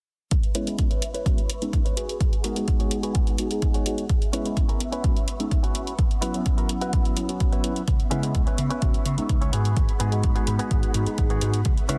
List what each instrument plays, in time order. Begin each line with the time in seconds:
0.31 string machine B4 E5 C#6, kick, closed hi-hat
0.43 closed hi-hat
0.55 tine electric piano G#3 B3 C#4 E4, clean electric guitar E4 B4 C#5, closed hi-hat
0.67 tine electric piano G#3 B3 C#4 E4, closed hi-hat
0.78 muted clean electric guitar stroke, kick, closed hi-hat
0.90 clean electric guitar E4 B4 C#5, closed hi-hat
1.02 closed hi-hat
1.14 clean electric guitar E4 B4 C#5, closed hi-hat
1.26 tine electric piano G#3 B3 C#4 F#4, kick, closed hi-hat
1.38 closed hi-hat
1.50 closed hi-hat
1.62 tine electric piano G#3 B3 C#4 D#4, closed hi-hat
1.73 kick, closed hi-hat
1.85 clean electric guitar E4 B4 C#5, closed hi-hat
1.96 clean electric guitar F#4 G#4 B4, string machine G#4 F#5, closed hi-hat
2.09 closed hi-hat
2.21 kick, closed hi-hat
2.33 closed hi-hat
2.44 tine electric piano G#3 B3 D#4 F#4, clean electric guitar F#4 G#4 A#4, closed hi-hat
2.56 tine electric piano G#3 B3 D#4 F#4, closed hi-hat
2.67 muted clean electric guitar stroke, kick, closed hi-hat
2.80 clean electric guitar F#4 G#4 C#5, closed hi-hat
2.91 closed hi-hat
3.03 clean electric guitar F#4 G#4 B4, closed hi-hat
3.15 kick, closed hi-hat
3.27 closed hi-hat
3.38 tine electric piano G#3 B3 D#4 F#4, closed hi-hat
3.51 tine electric piano G#3 B3 D#4 G#4, closed hi-hat
3.62 kick, closed hi-hat
3.74 clean electric guitar F#4 G#4 C#5, closed hi-hat
3.86 tine electric piano G#3 B3 D#4 F#4, closed hi-hat
3.98 closed hi-hat
4.09 string machine B3 E5 C#6, kick, closed hi-hat
4.22 closed hi-hat
4.33 tine electric piano G#3 B3 C#4 E4, clean electric guitar C#4 E4 B4, closed hi-hat
4.45 tine electric piano G#3 B3 C#4 E4, closed hi-hat
4.57 muted clean electric guitar stroke, kick, closed hi-hat
4.68 clean electric guitar C#4 E4 A#4, closed hi-hat
4.80 closed hi-hat
4.92 clean electric guitar C#4 E4 B4, closed hi-hat
5.04 tine electric piano G#3 B3 C#4 F#4, kick, closed hi-hat
5.16 closed hi-hat
5.28 closed hi-hat
5.40 tine electric piano G#3 B3 C#4 D#4, closed hi-hat
5.51 kick, closed hi-hat
5.63 clean electric guitar C#4 E4 F#4, closed hi-hat
5.75 closed hi-hat
5.87 closed hi-hat
5.98 string machine F#5 E6, kick, closed hi-hat
6.11 closed hi-hat
6.22 tine electric piano F#3 B3 C#4 E4, clean electric guitar E4 F#4 B4, closed hi-hat
6.34 tine electric piano F#3 B3 C#4 E4, closed hi-hat
6.46 muted clean electric guitar stroke, kick, closed hi-hat
6.57 clean electric guitar E4 F#4 A#4, closed hi-hat
6.69 closed hi-hat
6.81 clean electric guitar E4 F#4 B4, closed hi-hat
6.93 kick, closed hi-hat
7.05 closed hi-hat
7.16 tine electric piano F#3 B3 C#4 E4, closed hi-hat
7.29 tine electric piano F#3 B3 C#4 F#4, closed hi-hat
7.40 kick, closed hi-hat
7.52 clean electric guitar E4 F#4 B4, closed hi-hat
7.63 tine electric piano F#3 B3 C#4 E4, closed hi-hat
7.76 closed hi-hat
7.87 slap bass C#2, string machine E5 C#6, kick, closed hi-hat
8.00 closed hi-hat
8.11 slap bass C#3, tine electric piano G#3 B3 C#4 E4, clean electric guitar C#4 E4 B4, closed hi-hat
8.23 tine electric piano G#3 B3 C#4 E4, closed hi-hat
8.35 slap bass C#2, muted clean electric guitar stroke, kick, closed hi-hat
8.47 clean electric guitar C#4 E4 B4, closed hi-hat
8.58 slap bass C#3, closed hi-hat
8.70 clean electric guitar C#4 E4 B4, closed hi-hat
8.82 slap bass C#2, tine electric piano G#3 B3 C#4 F#4, kick, closed hi-hat
8.94 muted slap bass stroke, closed hi-hat
9.06 slap bass C#3, closed hi-hat
9.17 tine electric piano G#3 B3 C#4 D#4, muted slap bass stroke, closed hi-hat
9.29 slap bass C#2, kick, closed hi-hat
9.41 clean electric guitar C#4 E4 C#5, closed hi-hat
9.52 slap bass G#2, clean electric guitar B3 F#4 G#4, string machine G#4 F#5 B5, closed hi-hat
9.65 closed hi-hat
9.77 slap bass G#1, kick, closed hi-hat
9.89 muted slap bass stroke, closed hi-hat
10.00 slap bass G#2, tine electric piano G#3 B3 D#4 F#4, clean electric guitar B3 F#4 G#4, closed hi-hat
10.11 tine electric piano G#3 B3 D#4 F#4, closed hi-hat
10.23 slap bass G#1, muted clean electric guitar stroke, kick, closed hi-hat
10.35 clean electric guitar B3 F#4 G#4, closed hi-hat
10.47 slap bass G#2, closed hi-hat
10.59 clean electric guitar B3 F#4 G#4, closed hi-hat
10.71 slap bass G#1, kick, closed hi-hat
10.83 muted slap bass stroke, closed hi-hat
10.94 slap bass G#2, tine electric piano G#3 B3 D#4 F#4, closed hi-hat
11.06 tine electric piano G#3 B3 D#4 G#4, muted slap bass stroke, closed hi-hat
11.18 slap bass G#1, kick, closed hi-hat
11.30 clean electric guitar B3 F#4 G#4, closed hi-hat
11.41 slap bass G#2, tine electric piano G#3 B3 D#4 F#4, closed hi-hat
11.54 closed hi-hat
11.65 slap bass C#2, string machine B3 E5 C#6, kick, closed hi-hat
11.77 closed hi-hat
11.89 slap bass C#3, tine electric piano G#3 B3 C#4 E4, clean electric guitar C#4 E4 B4, closed hi-hat